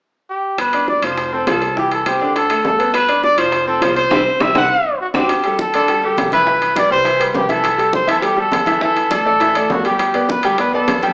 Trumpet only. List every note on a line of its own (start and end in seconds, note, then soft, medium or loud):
0.30 0.57 G4 medium
0.60 0.87 B4 medium
0.89 1.06 D5 medium
1.04 1.35 C5 medium
1.33 1.47 A4 medium
1.48 1.75 A4 medium
1.78 1.91 G4 medium
1.94 2.09 A4 medium
2.07 2.36 G4 medium
2.36 2.63 A4 medium
2.66 2.93 A4 medium
2.95 3.22 B4 medium
3.24 3.41 D5 medium
3.39 3.67 C5 medium
3.68 3.84 A4 medium
3.82 3.96 C5 medium
3.97 4.43 C5 medium
4.42 4.56 E5 loud
4.57 4.97 F#5 medium
5.01 5.07 F#4 medium
5.16 5.56 G4 medium
5.60 5.73 A4 medium
5.75 6.01 A4 medium
6.04 6.31 G4 medium
6.33 6.74 B4 medium
6.78 6.91 D5 medium
6.92 7.24 C5 medium
7.36 7.52 G4 medium
7.51 7.94 A4 medium
7.95 8.08 C5 medium
8.10 8.17 A4 medium
8.25 8.41 G4 medium
8.40 8.83 A4 medium
8.83 9.10 A4 medium
9.13 9.74 A4 medium
9.72 9.86 F#4 medium
9.87 10.32 G4 medium
10.31 10.47 B4 medium
10.46 10.61 G4 medium
10.60 10.74 B4 medium
10.74 11.13 A4 medium